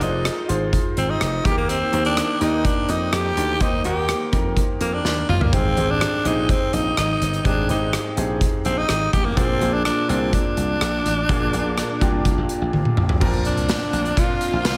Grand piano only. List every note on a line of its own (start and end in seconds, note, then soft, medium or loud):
0.00 1.45 D#3 medium
0.00 0.48 D#4 medium
0.00 0.49 F4 medium
0.00 1.45 G4 soft
0.00 0.49 G#4 medium
0.00 1.47 A#4 medium
0.00 1.47 B4 medium
0.00 0.49 C5 medium
0.48 1.35 D#4 medium
0.48 1.35 F4 medium
0.48 1.35 G#4 medium
0.48 1.35 C5 medium
1.44 1.91 D#3 medium
1.44 1.88 A#3 medium
1.44 1.88 D#4 medium
1.44 1.88 G4 medium
1.44 1.51 G#4 medium
1.51 1.91 A#4 medium
1.92 2.36 D#3 medium
1.92 2.36 A#3 medium
1.92 2.36 G4 medium
1.92 2.36 C5 medium
2.40 3.27 A#3 medium
2.40 3.27 D#4 medium
2.40 3.27 G4 medium
2.40 3.27 A#4 medium
3.37 4.05 D#3 medium
3.60 3.82 A#3 medium
3.60 3.82 D#4 medium
3.60 3.82 G4 medium
3.60 3.83 C5 medium
3.84 4.28 A#3 medium
3.84 4.28 D#4 medium
3.84 4.28 G4 medium
3.84 4.28 A#4 medium
4.32 5.19 A#3 medium
4.32 5.19 D#4 medium
4.32 5.19 G4 medium
4.32 5.19 A#4 medium
5.52 6.21 G#2 medium
5.52 5.74 C4 medium
5.52 5.74 D#4 medium
5.52 5.74 G4 medium
5.52 5.75 G#4 medium
5.76 6.20 D#3 medium
5.76 6.20 C4 medium
5.76 6.20 G4 medium
5.76 6.20 G#4 medium
6.24 7.11 C4 medium
6.24 7.11 D#4 medium
6.24 7.11 G4 medium
6.24 7.11 G#4 medium
7.44 8.13 G#2 medium
7.44 7.66 C4 medium
7.44 7.66 D#4 medium
7.44 7.67 G4 medium
7.44 7.67 G#4 medium
7.68 8.12 C4 medium
7.68 8.12 D#4 medium
7.68 8.12 G4 medium
7.68 8.12 G#4 medium
8.17 9.03 C4 medium
8.17 9.03 D#4 medium
8.17 9.03 G4 medium
8.17 9.04 G#4 medium
9.36 10.05 A#2 medium
9.36 9.58 A#3 medium
9.36 9.58 D4 medium
9.36 9.59 F4 medium
9.36 9.59 G#4 medium
9.61 10.04 A#3 medium
9.61 10.04 D4 medium
9.61 10.04 F4 medium
9.61 10.05 G#4 medium
10.08 10.95 A#3 medium
10.08 10.95 D4 medium
10.08 10.95 F4 medium
10.08 10.96 G#4 medium
11.29 11.97 A#2 medium
11.29 11.51 A#3 medium
11.29 11.51 D4 medium
11.29 11.51 F4 medium
11.29 11.51 G#4 medium
11.53 11.96 A#3 medium
11.53 11.96 D4 medium
11.53 11.97 F4 medium
11.53 11.97 G#4 medium
12.01 12.87 A#3 medium
12.01 12.87 D4 medium
12.01 12.87 F4 medium
12.01 12.88 G4 medium
13.20 13.89 A#2 medium
13.20 14.07 C4 medium
13.20 14.07 D4 medium
13.20 14.07 F4 medium
13.20 14.08 A#4 medium